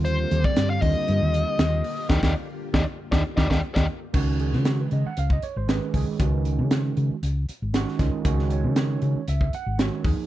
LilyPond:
<<
  \new Staff \with { instrumentName = "Lead electric guitar" } { \time 4/4 \key ees \minor \tempo 4 = 117 c''8. d''8 f''16 ees''2~ ees''8 | <d'' ees'' g''>16 <d'' ees'' g''>16 r8. <d'' ees'' g''>16 r8 <d'' ees'' g''>16 r16 <d'' ees'' g''>16 <d'' ees'' g''>16 r16 <d'' ees'' g''>16 r8 | r1 | r1 |
r1 | }
  \new Staff \with { instrumentName = "Tine electric piano" } { \time 4/4 \key ees \minor r1 | <bes d' ees'>16 <bes d' ees'>16 r8. <bes d' ees'>16 r8 <bes d' ees'>16 r16 <bes d' ees'>16 <bes d' ees'>16 r16 <bes d' ees'>16 r8 | r8 aes'16 f'16 ges'16 ces''16 ees''16 ges''16 f''16 ees''16 des''16 c''16 ces''4~ | ces''8 r2. r8 |
r8 des''8 des''4 fes''8 ges''8 des''8 r8 | }
  \new Staff \with { instrumentName = "Tine electric piano" } { \time 4/4 \key ees \minor <d g c' f'>8 <d g c' g'>4 <d g c' f'>2 r8 | r1 | <ees aes des' ges'>2 r4 <ees aes des' aes'>8 <ees aes des' aes'>8 | <ees aes des' ges'>2 r4 <ees aes des' ges'>8 <ees aes des' f'>8 |
<ees aes des' ges'>2 r4 <ees aes des' ges'>8 <f bes ees' aes'>8 | }
  \new Staff \with { instrumentName = "String machine" } { \time 4/4 \key ees \minor <d bes f' g'>1~ | <d bes f' g'>1 | r1 | r1 |
r1 | }
  \new Staff \with { instrumentName = "Fingered electric bass" } { \clef bass \time 4/4 \key ees \minor ees,8 ees,16 r16 g,8 ees,16 r16 g,16 ees,8 r16 ees,8 r8 | ees,16 ees,16 r8. ees,16 r8 ees,16 r16 ees,16 ees,16 r16 ees,16 r8 | des,8. des8. des16 r16 des,8 r16 aes,,8 r16 des,16 r16 | des,8. des8. des16 r16 des,8 r16 aes,,8 r16 des,16 r16 |
des,8. des8. des16 r16 des,8 r16 aes,,8 r16 ees,16 r16 | }
  \new DrumStaff \with { instrumentName = "Drums" } \drummode { \time 4/4 hh8 hh16 bd16 <hh sn>8 <hho bd>8 hh8 hh8 <hh sn>8 hho8 | <bd sn>16 <bd sn>8. r16 <bd sn>8. <bd sn>8 <bd sn>16 <bd sn>16 r16 <bd sn>8. | <cymc bd>8 hh16 sn16 <hh sn>8 hh8 hh16 bd16 hh8 <hh sn>8 <hho bd>8 | <hh bd>8 hh8 <hh sn>8 hh8 hh8 hh8 <hh sn>16 sn16 <hh bd sn>8 |
<hh bd>16 sn16 hh8 <hh sn>8 hh8 hh16 bd16 hh8 <hh sn>8 <hho bd>8 | }
>>